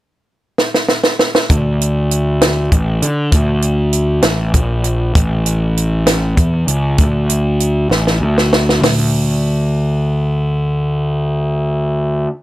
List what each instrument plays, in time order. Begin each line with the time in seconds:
0.58 snare
0.74 snare
0.89 snare
1.04 snare
1.19 snare
1.35 snare
1.50 picked electric bass D2, kick, closed hi-hat
1.81 closed hi-hat
2.11 closed hi-hat
2.41 snare, closed hi-hat
2.72 picked electric bass A1, kick, closed hi-hat
3.02 picked electric bass D3, closed hi-hat
3.32 picked electric bass D2, kick, closed hi-hat
3.62 closed hi-hat
3.93 closed hi-hat
4.22 picked electric bass A1, snare, closed hi-hat
4.54 picked electric bass A#1, kick, closed hi-hat
4.84 closed hi-hat
5.15 picked electric bass A1, kick, closed hi-hat
5.46 closed hi-hat
5.77 closed hi-hat
6.07 snare, closed hi-hat
6.37 picked electric bass E2, kick, closed hi-hat
6.67 picked electric bass C#2, closed hi-hat
6.98 picked electric bass D2, kick, closed hi-hat
7.29 closed hi-hat
7.60 closed hi-hat
7.89 picked electric bass A1, snare
8.07 snare
8.21 picked electric bass D2
8.38 snare
8.53 snare
8.69 snare
8.81 picked electric bass D2, snare, floor tom, open hi-hat